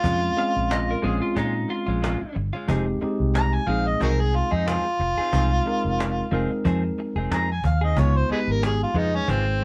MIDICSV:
0, 0, Header, 1, 9, 480
1, 0, Start_track
1, 0, Key_signature, -4, "minor"
1, 0, Tempo, 659341
1, 31, Time_signature, 4, 2, 24, 8
1, 7019, End_track
2, 0, Start_track
2, 0, Title_t, "Clean electric guitar"
2, 0, Program_c, 0, 27
2, 280, Note_on_c, 0, 77, 85
2, 510, Note_off_c, 0, 77, 0
2, 525, Note_on_c, 0, 75, 77
2, 650, Note_off_c, 0, 75, 0
2, 660, Note_on_c, 0, 70, 69
2, 753, Note_off_c, 0, 70, 0
2, 756, Note_on_c, 0, 68, 82
2, 883, Note_off_c, 0, 68, 0
2, 886, Note_on_c, 0, 65, 83
2, 990, Note_off_c, 0, 65, 0
2, 1001, Note_on_c, 0, 63, 68
2, 1232, Note_off_c, 0, 63, 0
2, 1238, Note_on_c, 0, 65, 97
2, 1704, Note_off_c, 0, 65, 0
2, 7019, End_track
3, 0, Start_track
3, 0, Title_t, "Harmonica"
3, 0, Program_c, 1, 22
3, 0, Note_on_c, 1, 65, 105
3, 970, Note_off_c, 1, 65, 0
3, 2442, Note_on_c, 1, 82, 99
3, 2576, Note_on_c, 1, 80, 82
3, 2587, Note_off_c, 1, 82, 0
3, 2680, Note_on_c, 1, 77, 91
3, 2691, Note_off_c, 1, 80, 0
3, 2818, Note_on_c, 1, 75, 77
3, 2829, Note_off_c, 1, 77, 0
3, 2915, Note_off_c, 1, 75, 0
3, 2929, Note_on_c, 1, 63, 60
3, 2929, Note_on_c, 1, 66, 60
3, 2929, Note_on_c, 1, 70, 85
3, 2975, Note_off_c, 1, 66, 0
3, 2988, Note_off_c, 1, 63, 0
3, 3061, Note_on_c, 1, 68, 86
3, 3072, Note_off_c, 1, 70, 0
3, 3169, Note_on_c, 1, 65, 81
3, 3180, Note_off_c, 1, 68, 0
3, 3300, Note_on_c, 1, 63, 82
3, 3311, Note_off_c, 1, 65, 0
3, 3406, Note_on_c, 1, 65, 108
3, 3417, Note_off_c, 1, 63, 0
3, 4813, Note_off_c, 1, 65, 0
3, 5334, Note_on_c, 1, 82, 91
3, 5451, Note_off_c, 1, 82, 0
3, 5471, Note_on_c, 1, 80, 81
3, 5561, Note_off_c, 1, 80, 0
3, 5575, Note_on_c, 1, 77, 77
3, 5691, Note_off_c, 1, 77, 0
3, 5706, Note_on_c, 1, 75, 80
3, 5811, Note_on_c, 1, 73, 80
3, 5822, Note_off_c, 1, 75, 0
3, 5943, Note_on_c, 1, 72, 76
3, 5954, Note_off_c, 1, 73, 0
3, 6035, Note_off_c, 1, 72, 0
3, 6054, Note_on_c, 1, 63, 57
3, 6054, Note_on_c, 1, 68, 57
3, 6054, Note_on_c, 1, 71, 82
3, 6106, Note_off_c, 1, 68, 0
3, 6111, Note_off_c, 1, 63, 0
3, 6196, Note_on_c, 1, 70, 90
3, 6207, Note_off_c, 1, 71, 0
3, 6282, Note_off_c, 1, 70, 0
3, 6297, Note_on_c, 1, 68, 78
3, 6411, Note_off_c, 1, 68, 0
3, 6426, Note_on_c, 1, 65, 73
3, 6534, Note_on_c, 1, 63, 83
3, 6545, Note_off_c, 1, 65, 0
3, 6660, Note_on_c, 1, 61, 86
3, 6671, Note_off_c, 1, 63, 0
3, 6770, Note_on_c, 1, 60, 78
3, 6781, Note_off_c, 1, 61, 0
3, 7019, Note_off_c, 1, 60, 0
3, 7019, End_track
4, 0, Start_track
4, 0, Title_t, "Tine electric piano"
4, 0, Program_c, 2, 4
4, 30, Note_on_c, 2, 56, 71
4, 31, Note_on_c, 2, 60, 59
4, 38, Note_on_c, 2, 61, 62
4, 40, Note_on_c, 2, 65, 73
4, 247, Note_off_c, 2, 56, 0
4, 248, Note_off_c, 2, 60, 0
4, 251, Note_off_c, 2, 61, 0
4, 252, Note_off_c, 2, 65, 0
4, 268, Note_on_c, 2, 56, 80
4, 273, Note_on_c, 2, 60, 72
4, 279, Note_on_c, 2, 61, 68
4, 283, Note_on_c, 2, 65, 84
4, 703, Note_off_c, 2, 56, 0
4, 706, Note_off_c, 2, 60, 0
4, 708, Note_off_c, 2, 61, 0
4, 711, Note_off_c, 2, 65, 0
4, 747, Note_on_c, 2, 56, 89
4, 753, Note_on_c, 2, 60, 72
4, 758, Note_on_c, 2, 61, 81
4, 760, Note_on_c, 2, 65, 86
4, 1616, Note_off_c, 2, 56, 0
4, 1618, Note_off_c, 2, 60, 0
4, 1621, Note_off_c, 2, 61, 0
4, 1622, Note_off_c, 2, 65, 0
4, 1947, Note_on_c, 2, 56, 88
4, 1952, Note_on_c, 2, 60, 76
4, 1956, Note_on_c, 2, 63, 72
4, 1961, Note_on_c, 2, 67, 86
4, 2168, Note_off_c, 2, 56, 0
4, 2171, Note_off_c, 2, 60, 0
4, 2173, Note_off_c, 2, 63, 0
4, 2175, Note_off_c, 2, 67, 0
4, 2195, Note_on_c, 2, 56, 87
4, 2200, Note_on_c, 2, 60, 72
4, 2203, Note_on_c, 2, 63, 78
4, 2211, Note_on_c, 2, 67, 82
4, 2628, Note_off_c, 2, 56, 0
4, 2631, Note_off_c, 2, 60, 0
4, 2633, Note_off_c, 2, 63, 0
4, 2636, Note_off_c, 2, 67, 0
4, 2675, Note_on_c, 2, 56, 71
4, 2681, Note_on_c, 2, 60, 69
4, 2684, Note_on_c, 2, 63, 65
4, 2689, Note_on_c, 2, 68, 86
4, 3540, Note_off_c, 2, 56, 0
4, 3543, Note_off_c, 2, 60, 0
4, 3545, Note_off_c, 2, 63, 0
4, 3547, Note_off_c, 2, 68, 0
4, 3877, Note_on_c, 2, 56, 69
4, 3881, Note_on_c, 2, 60, 56
4, 3884, Note_on_c, 2, 63, 66
4, 3891, Note_on_c, 2, 65, 73
4, 4094, Note_off_c, 2, 56, 0
4, 4096, Note_off_c, 2, 60, 0
4, 4098, Note_off_c, 2, 63, 0
4, 4101, Note_off_c, 2, 65, 0
4, 4115, Note_on_c, 2, 56, 83
4, 4123, Note_on_c, 2, 60, 68
4, 4126, Note_on_c, 2, 63, 76
4, 4130, Note_on_c, 2, 70, 82
4, 4548, Note_off_c, 2, 56, 0
4, 4552, Note_off_c, 2, 60, 0
4, 4553, Note_off_c, 2, 63, 0
4, 4555, Note_off_c, 2, 70, 0
4, 4594, Note_on_c, 2, 56, 81
4, 4599, Note_on_c, 2, 60, 77
4, 4601, Note_on_c, 2, 63, 78
4, 4607, Note_on_c, 2, 70, 94
4, 5457, Note_off_c, 2, 56, 0
4, 5460, Note_off_c, 2, 60, 0
4, 5461, Note_off_c, 2, 63, 0
4, 5464, Note_off_c, 2, 70, 0
4, 5796, Note_on_c, 2, 56, 64
4, 5799, Note_on_c, 2, 59, 61
4, 5805, Note_on_c, 2, 63, 62
4, 5810, Note_on_c, 2, 65, 75
4, 6011, Note_off_c, 2, 56, 0
4, 6013, Note_off_c, 2, 59, 0
4, 6016, Note_off_c, 2, 63, 0
4, 6018, Note_off_c, 2, 65, 0
4, 6036, Note_on_c, 2, 56, 66
4, 6040, Note_on_c, 2, 59, 60
4, 6045, Note_on_c, 2, 63, 64
4, 6052, Note_on_c, 2, 67, 67
4, 6466, Note_off_c, 2, 56, 0
4, 6468, Note_off_c, 2, 59, 0
4, 6470, Note_off_c, 2, 63, 0
4, 6474, Note_off_c, 2, 67, 0
4, 6513, Note_on_c, 2, 56, 67
4, 6517, Note_on_c, 2, 71, 65
4, 6522, Note_on_c, 2, 63, 65
4, 6524, Note_on_c, 2, 68, 81
4, 7019, Note_off_c, 2, 56, 0
4, 7019, Note_off_c, 2, 63, 0
4, 7019, Note_off_c, 2, 68, 0
4, 7019, Note_off_c, 2, 71, 0
4, 7019, End_track
5, 0, Start_track
5, 0, Title_t, "Clean electric guitar"
5, 0, Program_c, 3, 27
5, 24, Note_on_c, 3, 46, 75
5, 31, Note_on_c, 3, 56, 77
5, 36, Note_on_c, 3, 61, 74
5, 39, Note_on_c, 3, 65, 83
5, 150, Note_off_c, 3, 65, 0
5, 157, Note_off_c, 3, 61, 0
5, 161, Note_off_c, 3, 56, 0
5, 162, Note_off_c, 3, 46, 0
5, 745, Note_on_c, 3, 46, 66
5, 753, Note_on_c, 3, 56, 61
5, 759, Note_on_c, 3, 61, 68
5, 767, Note_on_c, 3, 65, 66
5, 871, Note_off_c, 3, 65, 0
5, 877, Note_off_c, 3, 61, 0
5, 882, Note_off_c, 3, 56, 0
5, 884, Note_off_c, 3, 46, 0
5, 987, Note_on_c, 3, 46, 73
5, 995, Note_on_c, 3, 56, 95
5, 999, Note_on_c, 3, 61, 82
5, 1005, Note_on_c, 3, 65, 87
5, 1113, Note_off_c, 3, 65, 0
5, 1118, Note_off_c, 3, 61, 0
5, 1125, Note_off_c, 3, 46, 0
5, 1125, Note_off_c, 3, 56, 0
5, 1358, Note_on_c, 3, 65, 53
5, 1371, Note_on_c, 3, 61, 49
5, 1381, Note_on_c, 3, 56, 46
5, 1464, Note_off_c, 3, 56, 0
5, 1464, Note_on_c, 3, 46, 59
5, 1470, Note_off_c, 3, 65, 0
5, 1471, Note_off_c, 3, 61, 0
5, 1472, Note_on_c, 3, 56, 65
5, 1480, Note_on_c, 3, 61, 65
5, 1484, Note_on_c, 3, 65, 74
5, 1595, Note_off_c, 3, 65, 0
5, 1603, Note_off_c, 3, 61, 0
5, 1604, Note_off_c, 3, 46, 0
5, 1606, Note_off_c, 3, 56, 0
5, 1843, Note_on_c, 3, 65, 54
5, 1854, Note_on_c, 3, 61, 52
5, 1865, Note_on_c, 3, 56, 47
5, 1949, Note_on_c, 3, 53, 89
5, 1953, Note_off_c, 3, 56, 0
5, 1953, Note_off_c, 3, 65, 0
5, 1956, Note_on_c, 3, 60, 82
5, 1958, Note_off_c, 3, 61, 0
5, 1961, Note_on_c, 3, 63, 90
5, 1965, Note_on_c, 3, 68, 92
5, 2077, Note_off_c, 3, 68, 0
5, 2082, Note_off_c, 3, 63, 0
5, 2087, Note_off_c, 3, 53, 0
5, 2087, Note_off_c, 3, 60, 0
5, 2670, Note_on_c, 3, 53, 54
5, 2678, Note_on_c, 3, 60, 63
5, 2686, Note_on_c, 3, 63, 59
5, 2694, Note_on_c, 3, 68, 59
5, 2797, Note_off_c, 3, 68, 0
5, 2806, Note_off_c, 3, 63, 0
5, 2809, Note_off_c, 3, 53, 0
5, 2810, Note_off_c, 3, 60, 0
5, 2914, Note_on_c, 3, 53, 71
5, 2922, Note_on_c, 3, 60, 85
5, 2925, Note_on_c, 3, 63, 78
5, 2932, Note_on_c, 3, 68, 81
5, 3044, Note_off_c, 3, 68, 0
5, 3051, Note_off_c, 3, 53, 0
5, 3051, Note_off_c, 3, 63, 0
5, 3054, Note_off_c, 3, 60, 0
5, 3286, Note_on_c, 3, 68, 48
5, 3300, Note_on_c, 3, 63, 46
5, 3310, Note_on_c, 3, 60, 38
5, 3395, Note_off_c, 3, 60, 0
5, 3396, Note_off_c, 3, 68, 0
5, 3396, Note_on_c, 3, 53, 54
5, 3403, Note_off_c, 3, 63, 0
5, 3404, Note_on_c, 3, 60, 58
5, 3412, Note_on_c, 3, 63, 55
5, 3417, Note_on_c, 3, 68, 57
5, 3523, Note_off_c, 3, 68, 0
5, 3531, Note_off_c, 3, 63, 0
5, 3532, Note_off_c, 3, 53, 0
5, 3536, Note_off_c, 3, 60, 0
5, 3769, Note_on_c, 3, 68, 49
5, 3783, Note_on_c, 3, 63, 43
5, 3792, Note_on_c, 3, 60, 43
5, 3877, Note_off_c, 3, 60, 0
5, 3877, Note_off_c, 3, 68, 0
5, 3880, Note_on_c, 3, 53, 67
5, 3882, Note_off_c, 3, 63, 0
5, 3886, Note_on_c, 3, 60, 79
5, 3891, Note_on_c, 3, 63, 69
5, 3895, Note_on_c, 3, 68, 81
5, 4007, Note_off_c, 3, 68, 0
5, 4011, Note_off_c, 3, 63, 0
5, 4014, Note_off_c, 3, 53, 0
5, 4017, Note_off_c, 3, 60, 0
5, 4597, Note_on_c, 3, 53, 64
5, 4606, Note_on_c, 3, 60, 67
5, 4615, Note_on_c, 3, 63, 70
5, 4620, Note_on_c, 3, 68, 63
5, 4730, Note_off_c, 3, 68, 0
5, 4732, Note_off_c, 3, 53, 0
5, 4735, Note_off_c, 3, 63, 0
5, 4737, Note_off_c, 3, 60, 0
5, 4840, Note_on_c, 3, 53, 91
5, 4846, Note_on_c, 3, 60, 88
5, 4851, Note_on_c, 3, 63, 80
5, 4857, Note_on_c, 3, 68, 91
5, 4967, Note_off_c, 3, 68, 0
5, 4973, Note_off_c, 3, 53, 0
5, 4974, Note_off_c, 3, 63, 0
5, 4976, Note_off_c, 3, 60, 0
5, 5213, Note_on_c, 3, 68, 46
5, 5226, Note_on_c, 3, 63, 41
5, 5237, Note_on_c, 3, 60, 41
5, 5317, Note_on_c, 3, 53, 52
5, 5318, Note_off_c, 3, 60, 0
5, 5318, Note_off_c, 3, 68, 0
5, 5325, Note_off_c, 3, 63, 0
5, 5326, Note_on_c, 3, 60, 52
5, 5335, Note_on_c, 3, 63, 58
5, 5342, Note_on_c, 3, 68, 59
5, 5447, Note_off_c, 3, 68, 0
5, 5451, Note_off_c, 3, 53, 0
5, 5452, Note_off_c, 3, 63, 0
5, 5456, Note_off_c, 3, 60, 0
5, 5688, Note_on_c, 3, 68, 54
5, 5702, Note_on_c, 3, 63, 47
5, 5713, Note_on_c, 3, 60, 40
5, 5795, Note_off_c, 3, 68, 0
5, 5796, Note_on_c, 3, 49, 76
5, 5801, Note_on_c, 3, 56, 72
5, 5802, Note_off_c, 3, 63, 0
5, 5806, Note_off_c, 3, 60, 0
5, 5809, Note_on_c, 3, 59, 77
5, 5812, Note_on_c, 3, 65, 80
5, 5921, Note_off_c, 3, 65, 0
5, 5930, Note_off_c, 3, 49, 0
5, 5930, Note_off_c, 3, 59, 0
5, 5933, Note_off_c, 3, 56, 0
5, 6512, Note_on_c, 3, 49, 54
5, 6521, Note_on_c, 3, 56, 60
5, 6529, Note_on_c, 3, 59, 65
5, 6536, Note_on_c, 3, 65, 66
5, 6640, Note_off_c, 3, 65, 0
5, 6646, Note_off_c, 3, 59, 0
5, 6647, Note_off_c, 3, 49, 0
5, 6651, Note_off_c, 3, 56, 0
5, 6754, Note_on_c, 3, 49, 66
5, 6760, Note_on_c, 3, 56, 80
5, 6765, Note_on_c, 3, 59, 80
5, 6770, Note_on_c, 3, 65, 85
5, 6879, Note_off_c, 3, 65, 0
5, 6885, Note_off_c, 3, 59, 0
5, 6887, Note_off_c, 3, 49, 0
5, 6890, Note_off_c, 3, 56, 0
5, 7019, End_track
6, 0, Start_track
6, 0, Title_t, "Fingered electric bass"
6, 0, Program_c, 4, 33
6, 28, Note_on_c, 4, 41, 91
6, 213, Note_off_c, 4, 41, 0
6, 411, Note_on_c, 4, 34, 72
6, 674, Note_off_c, 4, 34, 0
6, 757, Note_on_c, 4, 34, 96
6, 859, Note_off_c, 4, 34, 0
6, 994, Note_on_c, 4, 46, 97
6, 1178, Note_off_c, 4, 46, 0
6, 1368, Note_on_c, 4, 34, 90
6, 1552, Note_off_c, 4, 34, 0
6, 1717, Note_on_c, 4, 31, 88
6, 1819, Note_off_c, 4, 31, 0
6, 1954, Note_on_c, 4, 29, 91
6, 2138, Note_off_c, 4, 29, 0
6, 2329, Note_on_c, 4, 36, 77
6, 2594, Note_off_c, 4, 36, 0
6, 2674, Note_on_c, 4, 34, 91
6, 2859, Note_off_c, 4, 34, 0
6, 2918, Note_on_c, 4, 36, 88
6, 3204, Note_off_c, 4, 36, 0
6, 3291, Note_on_c, 4, 41, 78
6, 3475, Note_off_c, 4, 41, 0
6, 3635, Note_on_c, 4, 29, 82
6, 3739, Note_off_c, 4, 29, 0
6, 3879, Note_on_c, 4, 36, 91
6, 4062, Note_off_c, 4, 36, 0
6, 4256, Note_on_c, 4, 29, 73
6, 4519, Note_off_c, 4, 29, 0
6, 4598, Note_on_c, 4, 29, 96
6, 4700, Note_off_c, 4, 29, 0
6, 4842, Note_on_c, 4, 41, 88
6, 5024, Note_off_c, 4, 41, 0
6, 5209, Note_on_c, 4, 29, 86
6, 5291, Note_off_c, 4, 29, 0
6, 5317, Note_on_c, 4, 41, 84
6, 5533, Note_off_c, 4, 41, 0
6, 5561, Note_on_c, 4, 39, 79
6, 5775, Note_off_c, 4, 39, 0
6, 5800, Note_on_c, 4, 37, 85
6, 5981, Note_off_c, 4, 37, 0
6, 6169, Note_on_c, 4, 32, 78
6, 6432, Note_off_c, 4, 32, 0
6, 6510, Note_on_c, 4, 41, 92
6, 6694, Note_off_c, 4, 41, 0
6, 6757, Note_on_c, 4, 32, 83
6, 7019, Note_off_c, 4, 32, 0
6, 7019, End_track
7, 0, Start_track
7, 0, Title_t, "Cajon"
7, 28, Note_on_c, 9, 36, 102
7, 101, Note_off_c, 9, 36, 0
7, 269, Note_on_c, 9, 38, 35
7, 341, Note_off_c, 9, 38, 0
7, 517, Note_on_c, 9, 38, 106
7, 590, Note_off_c, 9, 38, 0
7, 751, Note_on_c, 9, 38, 34
7, 824, Note_off_c, 9, 38, 0
7, 993, Note_on_c, 9, 36, 87
7, 994, Note_on_c, 9, 38, 44
7, 1066, Note_off_c, 9, 36, 0
7, 1067, Note_off_c, 9, 38, 0
7, 1233, Note_on_c, 9, 38, 33
7, 1306, Note_off_c, 9, 38, 0
7, 1483, Note_on_c, 9, 38, 107
7, 1556, Note_off_c, 9, 38, 0
7, 1715, Note_on_c, 9, 38, 32
7, 1788, Note_off_c, 9, 38, 0
7, 1955, Note_on_c, 9, 36, 105
7, 2028, Note_off_c, 9, 36, 0
7, 2194, Note_on_c, 9, 38, 32
7, 2267, Note_off_c, 9, 38, 0
7, 2440, Note_on_c, 9, 38, 104
7, 2513, Note_off_c, 9, 38, 0
7, 2917, Note_on_c, 9, 36, 76
7, 2990, Note_off_c, 9, 36, 0
7, 3159, Note_on_c, 9, 38, 31
7, 3232, Note_off_c, 9, 38, 0
7, 3404, Note_on_c, 9, 38, 106
7, 3477, Note_off_c, 9, 38, 0
7, 3879, Note_on_c, 9, 36, 109
7, 3952, Note_off_c, 9, 36, 0
7, 4120, Note_on_c, 9, 38, 35
7, 4193, Note_off_c, 9, 38, 0
7, 4371, Note_on_c, 9, 38, 102
7, 4443, Note_off_c, 9, 38, 0
7, 4607, Note_on_c, 9, 38, 35
7, 4679, Note_off_c, 9, 38, 0
7, 4842, Note_on_c, 9, 36, 77
7, 4844, Note_on_c, 9, 38, 45
7, 4915, Note_off_c, 9, 36, 0
7, 4917, Note_off_c, 9, 38, 0
7, 5080, Note_on_c, 9, 38, 32
7, 5153, Note_off_c, 9, 38, 0
7, 5326, Note_on_c, 9, 38, 99
7, 5399, Note_off_c, 9, 38, 0
7, 5560, Note_on_c, 9, 36, 77
7, 5632, Note_off_c, 9, 36, 0
7, 5800, Note_on_c, 9, 36, 104
7, 5872, Note_off_c, 9, 36, 0
7, 6284, Note_on_c, 9, 38, 102
7, 6357, Note_off_c, 9, 38, 0
7, 6520, Note_on_c, 9, 38, 34
7, 6593, Note_off_c, 9, 38, 0
7, 6757, Note_on_c, 9, 36, 77
7, 6830, Note_off_c, 9, 36, 0
7, 7019, End_track
8, 0, Start_track
8, 0, Title_t, "Muted clean electric guitar strokes"
8, 159, Note_on_c, 9, 29, 48
8, 232, Note_off_c, 9, 29, 0
8, 268, Note_on_c, 9, 29, 43
8, 341, Note_off_c, 9, 29, 0
8, 509, Note_on_c, 9, 29, 35
8, 582, Note_off_c, 9, 29, 0
8, 880, Note_on_c, 9, 29, 44
8, 953, Note_off_c, 9, 29, 0
8, 1122, Note_on_c, 9, 29, 49
8, 1195, Note_off_c, 9, 29, 0
8, 1226, Note_on_c, 9, 29, 45
8, 1299, Note_off_c, 9, 29, 0
8, 1604, Note_on_c, 9, 29, 43
8, 1676, Note_off_c, 9, 29, 0
8, 1709, Note_on_c, 9, 29, 44
8, 1782, Note_off_c, 9, 29, 0
8, 2085, Note_on_c, 9, 29, 49
8, 2158, Note_off_c, 9, 29, 0
8, 2193, Note_on_c, 9, 29, 41
8, 2266, Note_off_c, 9, 29, 0
8, 2436, Note_on_c, 9, 29, 38
8, 2509, Note_off_c, 9, 29, 0
8, 2806, Note_on_c, 9, 29, 44
8, 2879, Note_off_c, 9, 29, 0
8, 3053, Note_on_c, 9, 29, 43
8, 3126, Note_off_c, 9, 29, 0
8, 3155, Note_on_c, 9, 29, 35
8, 3228, Note_off_c, 9, 29, 0
8, 3532, Note_on_c, 9, 29, 42
8, 3605, Note_off_c, 9, 29, 0
8, 3640, Note_on_c, 9, 29, 41
8, 3713, Note_off_c, 9, 29, 0
8, 4016, Note_on_c, 9, 29, 49
8, 4088, Note_off_c, 9, 29, 0
8, 4120, Note_on_c, 9, 29, 38
8, 4193, Note_off_c, 9, 29, 0
8, 4361, Note_on_c, 9, 29, 39
8, 4434, Note_off_c, 9, 29, 0
8, 4739, Note_on_c, 9, 29, 46
8, 4812, Note_off_c, 9, 29, 0
8, 4976, Note_on_c, 9, 29, 46
8, 5049, Note_off_c, 9, 29, 0
8, 5086, Note_on_c, 9, 29, 42
8, 5158, Note_off_c, 9, 29, 0
8, 5456, Note_on_c, 9, 29, 39
8, 5529, Note_off_c, 9, 29, 0
8, 5560, Note_on_c, 9, 29, 40
8, 5633, Note_off_c, 9, 29, 0
8, 5930, Note_on_c, 9, 29, 39
8, 6003, Note_off_c, 9, 29, 0
8, 6038, Note_on_c, 9, 29, 35
8, 6111, Note_off_c, 9, 29, 0
8, 6277, Note_on_c, 9, 29, 35
8, 6350, Note_off_c, 9, 29, 0
8, 6888, Note_on_c, 9, 29, 38
8, 6961, Note_off_c, 9, 29, 0
8, 6997, Note_on_c, 9, 29, 34
8, 7019, Note_off_c, 9, 29, 0
8, 7019, End_track
9, 0, Start_track
9, 0, Title_t, "Muted fingered electric bass strokes"
9, 1613, Note_on_c, 9, 29, 34
9, 1686, Note_off_c, 9, 29, 0
9, 2200, Note_on_c, 9, 29, 36
9, 2273, Note_off_c, 9, 29, 0
9, 3773, Note_on_c, 9, 29, 35
9, 3845, Note_off_c, 9, 29, 0
9, 6039, Note_on_c, 9, 29, 32
9, 6112, Note_off_c, 9, 29, 0
9, 7019, End_track
0, 0, End_of_file